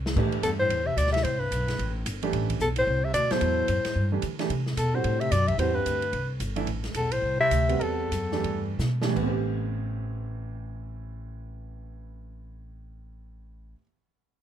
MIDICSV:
0, 0, Header, 1, 7, 480
1, 0, Start_track
1, 0, Tempo, 271493
1, 286, Time_signature, 4, 2, 24, 8
1, 12287, Tempo, 291687
1, 14207, Tempo, 348432
1, 15647, Tempo, 388601
1, 22142, End_track
2, 0, Start_track
2, 0, Title_t, "Soprano saxophone"
2, 0, Program_c, 0, 64
2, 766, Note_on_c, 0, 69, 83
2, 897, Note_off_c, 0, 69, 0
2, 1048, Note_on_c, 0, 72, 99
2, 1527, Note_on_c, 0, 76, 90
2, 1554, Note_off_c, 0, 72, 0
2, 1718, Note_on_c, 0, 74, 101
2, 1745, Note_off_c, 0, 76, 0
2, 1978, Note_off_c, 0, 74, 0
2, 1988, Note_on_c, 0, 76, 102
2, 2180, Note_on_c, 0, 72, 89
2, 2207, Note_off_c, 0, 76, 0
2, 2464, Note_on_c, 0, 71, 86
2, 2490, Note_off_c, 0, 72, 0
2, 3439, Note_off_c, 0, 71, 0
2, 4617, Note_on_c, 0, 69, 93
2, 4745, Note_off_c, 0, 69, 0
2, 4919, Note_on_c, 0, 72, 92
2, 5379, Note_on_c, 0, 76, 83
2, 5406, Note_off_c, 0, 72, 0
2, 5538, Note_off_c, 0, 76, 0
2, 5548, Note_on_c, 0, 74, 102
2, 5860, Note_on_c, 0, 72, 101
2, 5886, Note_off_c, 0, 74, 0
2, 7297, Note_off_c, 0, 72, 0
2, 8455, Note_on_c, 0, 69, 87
2, 8747, Note_on_c, 0, 72, 93
2, 8773, Note_off_c, 0, 69, 0
2, 9197, Note_on_c, 0, 76, 96
2, 9224, Note_off_c, 0, 72, 0
2, 9394, Note_on_c, 0, 74, 105
2, 9421, Note_off_c, 0, 76, 0
2, 9682, Note_on_c, 0, 76, 92
2, 9709, Note_off_c, 0, 74, 0
2, 9878, Note_off_c, 0, 76, 0
2, 9885, Note_on_c, 0, 72, 88
2, 10160, Note_on_c, 0, 71, 95
2, 10187, Note_off_c, 0, 72, 0
2, 11128, Note_off_c, 0, 71, 0
2, 12311, Note_on_c, 0, 69, 81
2, 12564, Note_on_c, 0, 72, 90
2, 12588, Note_off_c, 0, 69, 0
2, 13022, Note_off_c, 0, 72, 0
2, 13032, Note_on_c, 0, 76, 105
2, 13714, Note_on_c, 0, 69, 80
2, 13739, Note_off_c, 0, 76, 0
2, 15140, Note_off_c, 0, 69, 0
2, 22142, End_track
3, 0, Start_track
3, 0, Title_t, "Grand piano"
3, 0, Program_c, 1, 0
3, 287, Note_on_c, 1, 52, 68
3, 296, Note_on_c, 1, 57, 63
3, 300, Note_on_c, 1, 62, 58
3, 303, Note_on_c, 1, 67, 80
3, 1612, Note_off_c, 1, 52, 0
3, 1616, Note_off_c, 1, 57, 0
3, 1618, Note_off_c, 1, 62, 0
3, 1620, Note_off_c, 1, 67, 0
3, 3938, Note_on_c, 1, 52, 70
3, 3945, Note_on_c, 1, 57, 64
3, 3951, Note_on_c, 1, 62, 71
3, 3952, Note_on_c, 1, 67, 85
3, 4568, Note_off_c, 1, 52, 0
3, 4571, Note_off_c, 1, 57, 0
3, 4574, Note_off_c, 1, 62, 0
3, 4575, Note_off_c, 1, 67, 0
3, 5850, Note_on_c, 1, 54, 68
3, 5855, Note_on_c, 1, 64, 64
3, 5856, Note_on_c, 1, 47, 66
3, 5858, Note_on_c, 1, 69, 73
3, 6483, Note_off_c, 1, 54, 0
3, 6486, Note_off_c, 1, 64, 0
3, 6487, Note_off_c, 1, 47, 0
3, 6488, Note_off_c, 1, 69, 0
3, 7285, Note_on_c, 1, 52, 63
3, 7285, Note_on_c, 1, 57, 50
3, 7287, Note_on_c, 1, 62, 51
3, 7299, Note_on_c, 1, 67, 61
3, 7460, Note_off_c, 1, 52, 0
3, 7460, Note_off_c, 1, 57, 0
3, 7461, Note_off_c, 1, 62, 0
3, 7467, Note_off_c, 1, 67, 0
3, 7763, Note_on_c, 1, 52, 70
3, 7771, Note_on_c, 1, 67, 73
3, 7773, Note_on_c, 1, 57, 63
3, 7773, Note_on_c, 1, 62, 63
3, 7939, Note_off_c, 1, 52, 0
3, 7943, Note_off_c, 1, 67, 0
3, 7944, Note_off_c, 1, 57, 0
3, 7944, Note_off_c, 1, 62, 0
3, 8729, Note_on_c, 1, 50, 58
3, 8742, Note_on_c, 1, 55, 52
3, 8745, Note_on_c, 1, 60, 60
3, 8745, Note_on_c, 1, 66, 69
3, 9363, Note_off_c, 1, 50, 0
3, 9370, Note_off_c, 1, 55, 0
3, 9371, Note_off_c, 1, 60, 0
3, 9371, Note_off_c, 1, 66, 0
3, 9876, Note_on_c, 1, 55, 68
3, 9885, Note_on_c, 1, 66, 56
3, 9886, Note_on_c, 1, 60, 61
3, 9887, Note_on_c, 1, 71, 66
3, 10592, Note_off_c, 1, 55, 0
3, 10597, Note_off_c, 1, 66, 0
3, 10598, Note_off_c, 1, 60, 0
3, 10598, Note_off_c, 1, 71, 0
3, 11597, Note_on_c, 1, 52, 59
3, 11597, Note_on_c, 1, 57, 60
3, 11609, Note_on_c, 1, 64, 73
3, 11611, Note_on_c, 1, 62, 61
3, 11776, Note_off_c, 1, 52, 0
3, 11777, Note_off_c, 1, 57, 0
3, 11782, Note_off_c, 1, 64, 0
3, 11784, Note_off_c, 1, 62, 0
3, 13502, Note_on_c, 1, 55, 71
3, 13504, Note_on_c, 1, 60, 69
3, 13508, Note_on_c, 1, 71, 79
3, 13511, Note_on_c, 1, 66, 65
3, 14165, Note_off_c, 1, 55, 0
3, 14166, Note_off_c, 1, 60, 0
3, 14168, Note_off_c, 1, 71, 0
3, 14170, Note_off_c, 1, 66, 0
3, 14489, Note_on_c, 1, 52, 58
3, 14495, Note_on_c, 1, 62, 63
3, 14498, Note_on_c, 1, 57, 53
3, 14498, Note_on_c, 1, 67, 68
3, 15102, Note_off_c, 1, 52, 0
3, 15104, Note_off_c, 1, 62, 0
3, 15106, Note_off_c, 1, 57, 0
3, 15106, Note_off_c, 1, 67, 0
3, 15442, Note_on_c, 1, 57, 63
3, 15449, Note_on_c, 1, 52, 59
3, 15450, Note_on_c, 1, 67, 66
3, 15451, Note_on_c, 1, 62, 62
3, 15482, Note_on_c, 1, 45, 66
3, 15545, Note_off_c, 1, 52, 0
3, 15565, Note_on_c, 1, 52, 62
3, 15628, Note_off_c, 1, 57, 0
3, 15632, Note_off_c, 1, 62, 0
3, 15632, Note_off_c, 1, 67, 0
3, 15650, Note_on_c, 1, 59, 57
3, 15727, Note_on_c, 1, 60, 64
3, 15810, Note_on_c, 1, 67, 74
3, 21265, Note_off_c, 1, 45, 0
3, 21302, Note_off_c, 1, 52, 0
3, 21340, Note_off_c, 1, 59, 0
3, 21379, Note_off_c, 1, 60, 0
3, 21420, Note_off_c, 1, 67, 0
3, 22142, End_track
4, 0, Start_track
4, 0, Title_t, "Bass clarinet"
4, 0, Program_c, 2, 71
4, 768, Note_on_c, 2, 40, 71
4, 898, Note_off_c, 2, 40, 0
4, 1048, Note_on_c, 2, 45, 78
4, 1499, Note_on_c, 2, 48, 83
4, 1525, Note_off_c, 2, 45, 0
4, 1676, Note_on_c, 2, 47, 68
4, 1703, Note_off_c, 2, 48, 0
4, 1952, Note_off_c, 2, 47, 0
4, 1962, Note_on_c, 2, 48, 82
4, 2173, Note_on_c, 2, 45, 83
4, 2200, Note_off_c, 2, 48, 0
4, 2465, Note_on_c, 2, 43, 67
4, 2491, Note_off_c, 2, 45, 0
4, 3440, Note_off_c, 2, 43, 0
4, 4617, Note_on_c, 2, 40, 66
4, 4745, Note_off_c, 2, 40, 0
4, 4890, Note_on_c, 2, 45, 82
4, 5383, Note_on_c, 2, 48, 91
4, 5410, Note_off_c, 2, 45, 0
4, 5547, Note_off_c, 2, 48, 0
4, 5558, Note_on_c, 2, 47, 68
4, 5860, Note_on_c, 2, 45, 78
4, 5886, Note_off_c, 2, 47, 0
4, 7297, Note_off_c, 2, 45, 0
4, 8455, Note_on_c, 2, 40, 67
4, 8732, Note_on_c, 2, 45, 76
4, 8759, Note_off_c, 2, 40, 0
4, 9214, Note_on_c, 2, 48, 89
4, 9241, Note_off_c, 2, 45, 0
4, 9412, Note_on_c, 2, 47, 75
4, 9438, Note_off_c, 2, 48, 0
4, 9682, Note_on_c, 2, 48, 82
4, 9708, Note_off_c, 2, 47, 0
4, 9857, Note_off_c, 2, 48, 0
4, 9867, Note_on_c, 2, 45, 87
4, 10156, Note_on_c, 2, 43, 69
4, 10182, Note_off_c, 2, 45, 0
4, 11125, Note_off_c, 2, 43, 0
4, 12291, Note_on_c, 2, 40, 64
4, 12555, Note_on_c, 2, 45, 71
4, 12580, Note_off_c, 2, 40, 0
4, 13014, Note_off_c, 2, 45, 0
4, 13024, Note_on_c, 2, 48, 98
4, 13709, Note_on_c, 2, 40, 72
4, 13734, Note_off_c, 2, 48, 0
4, 15138, Note_off_c, 2, 40, 0
4, 22142, End_track
5, 0, Start_track
5, 0, Title_t, "Upright bass"
5, 0, Program_c, 3, 32
5, 0, Note_on_c, 3, 36, 89
5, 234, Note_off_c, 3, 36, 0
5, 284, Note_on_c, 3, 45, 91
5, 741, Note_off_c, 3, 45, 0
5, 752, Note_on_c, 3, 43, 79
5, 1216, Note_off_c, 3, 43, 0
5, 1227, Note_on_c, 3, 40, 81
5, 1701, Note_off_c, 3, 40, 0
5, 1709, Note_on_c, 3, 38, 79
5, 2182, Note_off_c, 3, 38, 0
5, 2198, Note_on_c, 3, 36, 86
5, 2656, Note_off_c, 3, 36, 0
5, 2667, Note_on_c, 3, 35, 88
5, 3141, Note_off_c, 3, 35, 0
5, 3159, Note_on_c, 3, 33, 83
5, 3627, Note_off_c, 3, 33, 0
5, 3637, Note_on_c, 3, 31, 92
5, 4106, Note_off_c, 3, 31, 0
5, 4116, Note_on_c, 3, 33, 96
5, 4582, Note_off_c, 3, 33, 0
5, 4592, Note_on_c, 3, 35, 81
5, 5063, Note_off_c, 3, 35, 0
5, 5074, Note_on_c, 3, 36, 90
5, 5527, Note_off_c, 3, 36, 0
5, 5538, Note_on_c, 3, 38, 89
5, 5820, Note_off_c, 3, 38, 0
5, 6033, Note_on_c, 3, 40, 86
5, 6504, Note_off_c, 3, 40, 0
5, 6515, Note_on_c, 3, 42, 88
5, 6789, Note_off_c, 3, 42, 0
5, 6995, Note_on_c, 3, 43, 88
5, 7465, Note_off_c, 3, 43, 0
5, 7481, Note_on_c, 3, 50, 82
5, 7943, Note_off_c, 3, 50, 0
5, 7954, Note_on_c, 3, 48, 87
5, 8424, Note_off_c, 3, 48, 0
5, 8433, Note_on_c, 3, 47, 88
5, 8904, Note_off_c, 3, 47, 0
5, 8919, Note_on_c, 3, 45, 83
5, 9387, Note_off_c, 3, 45, 0
5, 9397, Note_on_c, 3, 42, 95
5, 9856, Note_off_c, 3, 42, 0
5, 9867, Note_on_c, 3, 40, 91
5, 10341, Note_off_c, 3, 40, 0
5, 10354, Note_on_c, 3, 38, 83
5, 10825, Note_off_c, 3, 38, 0
5, 10836, Note_on_c, 3, 36, 83
5, 11298, Note_off_c, 3, 36, 0
5, 11309, Note_on_c, 3, 31, 81
5, 11782, Note_off_c, 3, 31, 0
5, 11791, Note_on_c, 3, 33, 78
5, 12266, Note_off_c, 3, 33, 0
5, 12277, Note_on_c, 3, 35, 80
5, 12726, Note_off_c, 3, 35, 0
5, 12733, Note_on_c, 3, 36, 78
5, 13193, Note_off_c, 3, 36, 0
5, 13212, Note_on_c, 3, 38, 86
5, 13684, Note_off_c, 3, 38, 0
5, 13699, Note_on_c, 3, 40, 82
5, 14192, Note_off_c, 3, 40, 0
5, 14208, Note_on_c, 3, 42, 77
5, 14643, Note_off_c, 3, 42, 0
5, 14653, Note_on_c, 3, 43, 86
5, 15118, Note_off_c, 3, 43, 0
5, 15132, Note_on_c, 3, 47, 85
5, 15632, Note_off_c, 3, 47, 0
5, 15646, Note_on_c, 3, 33, 97
5, 21289, Note_off_c, 3, 33, 0
5, 22142, End_track
6, 0, Start_track
6, 0, Title_t, "Muted upright bass strokes"
6, 5849, Note_on_c, 9, 29, 38
6, 6026, Note_off_c, 9, 29, 0
6, 6808, Note_on_c, 9, 29, 37
6, 6985, Note_off_c, 9, 29, 0
6, 22142, End_track
7, 0, Start_track
7, 0, Title_t, "Drums"
7, 106, Note_on_c, 9, 38, 63
7, 283, Note_off_c, 9, 38, 0
7, 288, Note_on_c, 9, 36, 75
7, 292, Note_on_c, 9, 49, 65
7, 465, Note_off_c, 9, 36, 0
7, 468, Note_off_c, 9, 49, 0
7, 570, Note_on_c, 9, 51, 40
7, 747, Note_off_c, 9, 51, 0
7, 763, Note_on_c, 9, 44, 50
7, 763, Note_on_c, 9, 51, 63
7, 940, Note_off_c, 9, 44, 0
7, 940, Note_off_c, 9, 51, 0
7, 1242, Note_on_c, 9, 51, 62
7, 1419, Note_off_c, 9, 51, 0
7, 1724, Note_on_c, 9, 44, 58
7, 1724, Note_on_c, 9, 51, 72
7, 1887, Note_on_c, 9, 38, 28
7, 1901, Note_off_c, 9, 44, 0
7, 1901, Note_off_c, 9, 51, 0
7, 2012, Note_on_c, 9, 51, 48
7, 2056, Note_off_c, 9, 38, 0
7, 2056, Note_on_c, 9, 38, 46
7, 2189, Note_off_c, 9, 51, 0
7, 2203, Note_on_c, 9, 51, 60
7, 2233, Note_off_c, 9, 38, 0
7, 2380, Note_off_c, 9, 51, 0
7, 2682, Note_on_c, 9, 44, 58
7, 2682, Note_on_c, 9, 51, 68
7, 2859, Note_off_c, 9, 44, 0
7, 2859, Note_off_c, 9, 51, 0
7, 2975, Note_on_c, 9, 51, 44
7, 2980, Note_on_c, 9, 38, 38
7, 3152, Note_off_c, 9, 51, 0
7, 3157, Note_off_c, 9, 38, 0
7, 3169, Note_on_c, 9, 51, 50
7, 3346, Note_off_c, 9, 51, 0
7, 3641, Note_on_c, 9, 44, 62
7, 3641, Note_on_c, 9, 51, 77
7, 3818, Note_off_c, 9, 44, 0
7, 3818, Note_off_c, 9, 51, 0
7, 3935, Note_on_c, 9, 51, 48
7, 4111, Note_off_c, 9, 51, 0
7, 4121, Note_on_c, 9, 51, 60
7, 4298, Note_off_c, 9, 51, 0
7, 4415, Note_on_c, 9, 51, 62
7, 4416, Note_on_c, 9, 36, 47
7, 4592, Note_off_c, 9, 51, 0
7, 4593, Note_off_c, 9, 36, 0
7, 4594, Note_on_c, 9, 44, 61
7, 4770, Note_off_c, 9, 44, 0
7, 4878, Note_on_c, 9, 51, 61
7, 5055, Note_off_c, 9, 51, 0
7, 5550, Note_on_c, 9, 44, 62
7, 5550, Note_on_c, 9, 51, 74
7, 5727, Note_off_c, 9, 44, 0
7, 5727, Note_off_c, 9, 51, 0
7, 5845, Note_on_c, 9, 51, 50
7, 5850, Note_on_c, 9, 38, 57
7, 6022, Note_off_c, 9, 51, 0
7, 6027, Note_off_c, 9, 38, 0
7, 6028, Note_on_c, 9, 51, 61
7, 6205, Note_off_c, 9, 51, 0
7, 6507, Note_on_c, 9, 44, 53
7, 6507, Note_on_c, 9, 51, 65
7, 6683, Note_off_c, 9, 44, 0
7, 6683, Note_off_c, 9, 51, 0
7, 6800, Note_on_c, 9, 51, 57
7, 6806, Note_on_c, 9, 38, 39
7, 6977, Note_off_c, 9, 51, 0
7, 6983, Note_off_c, 9, 38, 0
7, 7462, Note_on_c, 9, 44, 56
7, 7462, Note_on_c, 9, 51, 59
7, 7639, Note_off_c, 9, 44, 0
7, 7639, Note_off_c, 9, 51, 0
7, 7763, Note_on_c, 9, 51, 48
7, 7769, Note_on_c, 9, 38, 44
7, 7940, Note_off_c, 9, 51, 0
7, 7945, Note_off_c, 9, 38, 0
7, 7956, Note_on_c, 9, 51, 59
7, 8133, Note_off_c, 9, 51, 0
7, 8246, Note_on_c, 9, 38, 34
7, 8423, Note_off_c, 9, 38, 0
7, 8438, Note_on_c, 9, 44, 51
7, 8438, Note_on_c, 9, 51, 65
7, 8614, Note_off_c, 9, 44, 0
7, 8614, Note_off_c, 9, 51, 0
7, 8912, Note_on_c, 9, 51, 56
7, 9089, Note_off_c, 9, 51, 0
7, 9212, Note_on_c, 9, 51, 43
7, 9389, Note_off_c, 9, 51, 0
7, 9399, Note_on_c, 9, 44, 60
7, 9399, Note_on_c, 9, 51, 76
7, 9576, Note_off_c, 9, 44, 0
7, 9576, Note_off_c, 9, 51, 0
7, 9692, Note_on_c, 9, 51, 46
7, 9695, Note_on_c, 9, 36, 51
7, 9869, Note_off_c, 9, 51, 0
7, 9872, Note_off_c, 9, 36, 0
7, 9880, Note_on_c, 9, 51, 65
7, 10057, Note_off_c, 9, 51, 0
7, 10359, Note_on_c, 9, 44, 59
7, 10359, Note_on_c, 9, 51, 61
7, 10536, Note_off_c, 9, 44, 0
7, 10536, Note_off_c, 9, 51, 0
7, 10646, Note_on_c, 9, 51, 42
7, 10823, Note_off_c, 9, 51, 0
7, 10835, Note_on_c, 9, 51, 54
7, 11012, Note_off_c, 9, 51, 0
7, 11316, Note_on_c, 9, 44, 57
7, 11316, Note_on_c, 9, 51, 61
7, 11493, Note_off_c, 9, 44, 0
7, 11493, Note_off_c, 9, 51, 0
7, 11601, Note_on_c, 9, 51, 51
7, 11778, Note_off_c, 9, 51, 0
7, 11793, Note_on_c, 9, 51, 54
7, 11970, Note_off_c, 9, 51, 0
7, 12087, Note_on_c, 9, 51, 41
7, 12092, Note_on_c, 9, 38, 34
7, 12264, Note_off_c, 9, 51, 0
7, 12269, Note_off_c, 9, 38, 0
7, 12277, Note_on_c, 9, 44, 49
7, 12277, Note_on_c, 9, 51, 64
7, 12443, Note_off_c, 9, 44, 0
7, 12443, Note_off_c, 9, 51, 0
7, 12560, Note_on_c, 9, 51, 61
7, 12724, Note_off_c, 9, 51, 0
7, 13212, Note_on_c, 9, 44, 69
7, 13212, Note_on_c, 9, 51, 75
7, 13376, Note_off_c, 9, 44, 0
7, 13376, Note_off_c, 9, 51, 0
7, 13510, Note_on_c, 9, 51, 48
7, 13675, Note_off_c, 9, 51, 0
7, 13703, Note_on_c, 9, 51, 54
7, 13867, Note_off_c, 9, 51, 0
7, 14209, Note_on_c, 9, 44, 48
7, 14209, Note_on_c, 9, 51, 58
7, 14347, Note_off_c, 9, 44, 0
7, 14347, Note_off_c, 9, 51, 0
7, 14483, Note_on_c, 9, 38, 30
7, 14621, Note_off_c, 9, 38, 0
7, 14656, Note_on_c, 9, 51, 45
7, 14794, Note_off_c, 9, 51, 0
7, 15137, Note_on_c, 9, 44, 46
7, 15141, Note_on_c, 9, 38, 44
7, 15274, Note_off_c, 9, 44, 0
7, 15278, Note_off_c, 9, 38, 0
7, 15446, Note_on_c, 9, 38, 61
7, 15583, Note_off_c, 9, 38, 0
7, 15650, Note_on_c, 9, 49, 52
7, 15651, Note_on_c, 9, 36, 53
7, 15774, Note_off_c, 9, 49, 0
7, 15775, Note_off_c, 9, 36, 0
7, 22142, End_track
0, 0, End_of_file